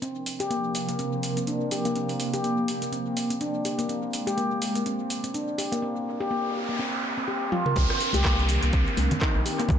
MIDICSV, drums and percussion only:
0, 0, Header, 1, 2, 480
1, 0, Start_track
1, 0, Tempo, 483871
1, 22, Time_signature, 4, 2, 24, 8
1, 9710, End_track
2, 0, Start_track
2, 0, Title_t, "Drums"
2, 23, Note_on_c, 9, 42, 42
2, 27, Note_on_c, 9, 82, 36
2, 122, Note_off_c, 9, 42, 0
2, 127, Note_off_c, 9, 82, 0
2, 261, Note_on_c, 9, 46, 81
2, 266, Note_on_c, 9, 82, 87
2, 360, Note_off_c, 9, 46, 0
2, 365, Note_off_c, 9, 82, 0
2, 397, Note_on_c, 9, 42, 52
2, 402, Note_on_c, 9, 82, 49
2, 496, Note_off_c, 9, 42, 0
2, 501, Note_off_c, 9, 82, 0
2, 503, Note_on_c, 9, 42, 44
2, 508, Note_on_c, 9, 82, 36
2, 602, Note_off_c, 9, 42, 0
2, 607, Note_off_c, 9, 82, 0
2, 742, Note_on_c, 9, 46, 80
2, 747, Note_on_c, 9, 82, 90
2, 841, Note_off_c, 9, 46, 0
2, 846, Note_off_c, 9, 82, 0
2, 879, Note_on_c, 9, 42, 52
2, 884, Note_on_c, 9, 82, 50
2, 978, Note_off_c, 9, 42, 0
2, 982, Note_on_c, 9, 42, 40
2, 983, Note_off_c, 9, 82, 0
2, 987, Note_on_c, 9, 82, 36
2, 1081, Note_off_c, 9, 42, 0
2, 1086, Note_off_c, 9, 82, 0
2, 1222, Note_on_c, 9, 46, 79
2, 1227, Note_on_c, 9, 82, 85
2, 1321, Note_off_c, 9, 46, 0
2, 1326, Note_off_c, 9, 82, 0
2, 1358, Note_on_c, 9, 42, 53
2, 1363, Note_on_c, 9, 82, 50
2, 1458, Note_off_c, 9, 42, 0
2, 1461, Note_on_c, 9, 42, 43
2, 1463, Note_off_c, 9, 82, 0
2, 1465, Note_on_c, 9, 82, 38
2, 1560, Note_off_c, 9, 42, 0
2, 1565, Note_off_c, 9, 82, 0
2, 1699, Note_on_c, 9, 46, 83
2, 1704, Note_on_c, 9, 82, 84
2, 1798, Note_off_c, 9, 46, 0
2, 1803, Note_off_c, 9, 82, 0
2, 1837, Note_on_c, 9, 42, 53
2, 1842, Note_on_c, 9, 82, 49
2, 1936, Note_off_c, 9, 42, 0
2, 1940, Note_on_c, 9, 42, 44
2, 1941, Note_off_c, 9, 82, 0
2, 1945, Note_on_c, 9, 82, 36
2, 2039, Note_off_c, 9, 42, 0
2, 2044, Note_off_c, 9, 82, 0
2, 2077, Note_on_c, 9, 46, 46
2, 2176, Note_off_c, 9, 46, 0
2, 2179, Note_on_c, 9, 46, 85
2, 2184, Note_on_c, 9, 82, 87
2, 2278, Note_off_c, 9, 46, 0
2, 2283, Note_off_c, 9, 82, 0
2, 2317, Note_on_c, 9, 42, 54
2, 2321, Note_on_c, 9, 82, 48
2, 2416, Note_off_c, 9, 42, 0
2, 2421, Note_off_c, 9, 82, 0
2, 2422, Note_on_c, 9, 42, 43
2, 2427, Note_on_c, 9, 82, 35
2, 2521, Note_off_c, 9, 42, 0
2, 2526, Note_off_c, 9, 82, 0
2, 2661, Note_on_c, 9, 46, 86
2, 2666, Note_on_c, 9, 82, 86
2, 2760, Note_off_c, 9, 46, 0
2, 2765, Note_off_c, 9, 82, 0
2, 2797, Note_on_c, 9, 42, 53
2, 2802, Note_on_c, 9, 82, 47
2, 2897, Note_off_c, 9, 42, 0
2, 2902, Note_off_c, 9, 82, 0
2, 2902, Note_on_c, 9, 42, 43
2, 2907, Note_on_c, 9, 82, 35
2, 3001, Note_off_c, 9, 42, 0
2, 3006, Note_off_c, 9, 82, 0
2, 3142, Note_on_c, 9, 46, 81
2, 3147, Note_on_c, 9, 82, 79
2, 3241, Note_off_c, 9, 46, 0
2, 3246, Note_off_c, 9, 82, 0
2, 3278, Note_on_c, 9, 42, 56
2, 3283, Note_on_c, 9, 82, 48
2, 3377, Note_off_c, 9, 42, 0
2, 3380, Note_on_c, 9, 42, 45
2, 3382, Note_off_c, 9, 82, 0
2, 3385, Note_on_c, 9, 82, 36
2, 3480, Note_off_c, 9, 42, 0
2, 3485, Note_off_c, 9, 82, 0
2, 3621, Note_on_c, 9, 46, 85
2, 3626, Note_on_c, 9, 82, 83
2, 3720, Note_off_c, 9, 46, 0
2, 3725, Note_off_c, 9, 82, 0
2, 3757, Note_on_c, 9, 42, 56
2, 3762, Note_on_c, 9, 82, 48
2, 3856, Note_off_c, 9, 42, 0
2, 3861, Note_off_c, 9, 82, 0
2, 3863, Note_on_c, 9, 42, 43
2, 3868, Note_on_c, 9, 82, 35
2, 3962, Note_off_c, 9, 42, 0
2, 3967, Note_off_c, 9, 82, 0
2, 4101, Note_on_c, 9, 46, 91
2, 4106, Note_on_c, 9, 82, 85
2, 4200, Note_off_c, 9, 46, 0
2, 4205, Note_off_c, 9, 82, 0
2, 4239, Note_on_c, 9, 42, 56
2, 4244, Note_on_c, 9, 82, 48
2, 4338, Note_off_c, 9, 42, 0
2, 4342, Note_on_c, 9, 42, 43
2, 4343, Note_off_c, 9, 82, 0
2, 4347, Note_on_c, 9, 82, 34
2, 4441, Note_off_c, 9, 42, 0
2, 4446, Note_off_c, 9, 82, 0
2, 4581, Note_on_c, 9, 46, 91
2, 4585, Note_on_c, 9, 82, 82
2, 4680, Note_off_c, 9, 46, 0
2, 4685, Note_off_c, 9, 82, 0
2, 4716, Note_on_c, 9, 42, 53
2, 4721, Note_on_c, 9, 82, 49
2, 4816, Note_off_c, 9, 42, 0
2, 4820, Note_off_c, 9, 82, 0
2, 4821, Note_on_c, 9, 42, 43
2, 4826, Note_on_c, 9, 82, 34
2, 4920, Note_off_c, 9, 42, 0
2, 4925, Note_off_c, 9, 82, 0
2, 5061, Note_on_c, 9, 46, 85
2, 5066, Note_on_c, 9, 82, 84
2, 5160, Note_off_c, 9, 46, 0
2, 5165, Note_off_c, 9, 82, 0
2, 5197, Note_on_c, 9, 42, 57
2, 5202, Note_on_c, 9, 82, 50
2, 5296, Note_off_c, 9, 42, 0
2, 5301, Note_off_c, 9, 82, 0
2, 5301, Note_on_c, 9, 42, 43
2, 5306, Note_on_c, 9, 82, 36
2, 5401, Note_off_c, 9, 42, 0
2, 5406, Note_off_c, 9, 82, 0
2, 5540, Note_on_c, 9, 46, 89
2, 5545, Note_on_c, 9, 82, 83
2, 5640, Note_off_c, 9, 46, 0
2, 5644, Note_off_c, 9, 82, 0
2, 5679, Note_on_c, 9, 42, 58
2, 5684, Note_on_c, 9, 82, 47
2, 5778, Note_off_c, 9, 42, 0
2, 5783, Note_off_c, 9, 82, 0
2, 7462, Note_on_c, 9, 48, 59
2, 7561, Note_off_c, 9, 48, 0
2, 7598, Note_on_c, 9, 47, 69
2, 7697, Note_off_c, 9, 47, 0
2, 7697, Note_on_c, 9, 64, 116
2, 7700, Note_on_c, 9, 42, 46
2, 7703, Note_on_c, 9, 36, 123
2, 7705, Note_on_c, 9, 82, 55
2, 7796, Note_off_c, 9, 64, 0
2, 7800, Note_off_c, 9, 42, 0
2, 7802, Note_off_c, 9, 36, 0
2, 7805, Note_off_c, 9, 82, 0
2, 7838, Note_on_c, 9, 37, 65
2, 7937, Note_off_c, 9, 37, 0
2, 7940, Note_on_c, 9, 46, 93
2, 7945, Note_on_c, 9, 82, 95
2, 8040, Note_off_c, 9, 46, 0
2, 8045, Note_off_c, 9, 82, 0
2, 8066, Note_on_c, 9, 63, 88
2, 8077, Note_on_c, 9, 42, 55
2, 8082, Note_on_c, 9, 82, 39
2, 8165, Note_off_c, 9, 63, 0
2, 8176, Note_off_c, 9, 42, 0
2, 8179, Note_on_c, 9, 63, 105
2, 8181, Note_off_c, 9, 82, 0
2, 8181, Note_on_c, 9, 37, 116
2, 8181, Note_on_c, 9, 39, 96
2, 8181, Note_on_c, 9, 42, 45
2, 8183, Note_on_c, 9, 36, 116
2, 8186, Note_on_c, 9, 82, 54
2, 8278, Note_off_c, 9, 63, 0
2, 8280, Note_off_c, 9, 37, 0
2, 8280, Note_off_c, 9, 39, 0
2, 8280, Note_off_c, 9, 42, 0
2, 8282, Note_off_c, 9, 36, 0
2, 8285, Note_off_c, 9, 82, 0
2, 8321, Note_on_c, 9, 82, 36
2, 8420, Note_off_c, 9, 82, 0
2, 8420, Note_on_c, 9, 46, 96
2, 8424, Note_on_c, 9, 82, 94
2, 8519, Note_off_c, 9, 46, 0
2, 8524, Note_off_c, 9, 82, 0
2, 8557, Note_on_c, 9, 42, 56
2, 8562, Note_on_c, 9, 82, 39
2, 8656, Note_off_c, 9, 42, 0
2, 8660, Note_on_c, 9, 42, 43
2, 8661, Note_off_c, 9, 82, 0
2, 8664, Note_on_c, 9, 36, 121
2, 8665, Note_on_c, 9, 82, 53
2, 8759, Note_off_c, 9, 42, 0
2, 8763, Note_off_c, 9, 36, 0
2, 8764, Note_off_c, 9, 82, 0
2, 8802, Note_on_c, 9, 82, 36
2, 8901, Note_off_c, 9, 82, 0
2, 8901, Note_on_c, 9, 46, 94
2, 8901, Note_on_c, 9, 63, 101
2, 8906, Note_on_c, 9, 82, 95
2, 9000, Note_off_c, 9, 46, 0
2, 9000, Note_off_c, 9, 63, 0
2, 9005, Note_off_c, 9, 82, 0
2, 9039, Note_on_c, 9, 42, 58
2, 9043, Note_on_c, 9, 64, 94
2, 9044, Note_on_c, 9, 82, 41
2, 9138, Note_off_c, 9, 42, 0
2, 9141, Note_on_c, 9, 37, 110
2, 9141, Note_on_c, 9, 39, 98
2, 9141, Note_on_c, 9, 42, 45
2, 9142, Note_off_c, 9, 64, 0
2, 9143, Note_off_c, 9, 82, 0
2, 9143, Note_on_c, 9, 36, 118
2, 9146, Note_on_c, 9, 82, 51
2, 9241, Note_off_c, 9, 37, 0
2, 9241, Note_off_c, 9, 39, 0
2, 9241, Note_off_c, 9, 42, 0
2, 9242, Note_off_c, 9, 36, 0
2, 9246, Note_off_c, 9, 82, 0
2, 9382, Note_on_c, 9, 46, 97
2, 9387, Note_on_c, 9, 82, 92
2, 9481, Note_off_c, 9, 46, 0
2, 9486, Note_off_c, 9, 82, 0
2, 9518, Note_on_c, 9, 42, 55
2, 9523, Note_on_c, 9, 82, 39
2, 9609, Note_on_c, 9, 64, 117
2, 9617, Note_off_c, 9, 42, 0
2, 9622, Note_off_c, 9, 82, 0
2, 9622, Note_on_c, 9, 42, 44
2, 9623, Note_on_c, 9, 36, 126
2, 9627, Note_on_c, 9, 82, 55
2, 9708, Note_off_c, 9, 64, 0
2, 9710, Note_off_c, 9, 36, 0
2, 9710, Note_off_c, 9, 42, 0
2, 9710, Note_off_c, 9, 82, 0
2, 9710, End_track
0, 0, End_of_file